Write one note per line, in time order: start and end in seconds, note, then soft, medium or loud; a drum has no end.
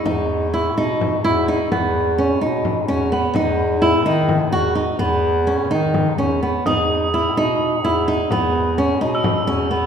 0.05 0.79 E2 medium
0.05 0.46 D#4 medium
0.05 frame drum medium
0.54 0.74 E4 medium
0.78 1.27 B2 medium
0.78 1.18 D#4 medium
1.01 frame drum medium
1.24 1.64 E2 medium
1.24 1.45 E4 medium
1.48 1.68 D#4 medium
1.72 2.44 E2 medium
1.72 2.12 B3 medium
1.72 frame drum medium
2.18 2.39 C#4 medium
2.41 2.90 B2 medium
2.41 2.82 D#4 medium
2.65 frame drum medium
2.88 3.27 E2 medium
2.88 3.09 C#4 medium
3.12 3.32 B3 medium
3.35 4.06 E2 loud
3.35 3.76 D#4 medium
3.35 frame drum medium
3.82 4.02 E4 medium
4.05 4.53 D#3 loud
4.05 4.46 D#4 medium
4.29 frame drum medium
4.52 4.90 E2 loud
4.52 4.73 F#4 medium
4.75 4.96 D#4 medium
4.99 5.71 E2 loud
4.99 5.40 B3 medium
4.99 frame drum medium
5.47 5.67 C#4 medium
5.69 6.20 D#3 medium
5.69 6.11 D#4 medium
5.94 frame drum medium
6.18 6.57 E2 medium
6.18 6.39 C#4 medium
6.43 6.63 B3 medium
6.65 7.38 E2 medium
6.65 7.07 D#4 medium
6.65 7.39 D#6 medium
6.65 frame drum medium
7.14 7.34 E4 medium
7.36 7.86 B2 medium
7.36 7.77 D#4 medium
7.84 8.22 E2 medium
7.84 8.04 E4 medium
8.08 8.28 D#4 medium
8.31 9.03 E2 loud
8.31 8.71 B3 medium
8.31 frame drum medium
8.78 8.98 C#4 medium
9.01 9.50 B2 medium
9.01 9.41 D#4 medium
9.15 9.86 E6 medium
9.24 frame drum medium
9.47 9.86 E2 loud
9.47 9.68 C#4 medium
9.71 9.86 B3 medium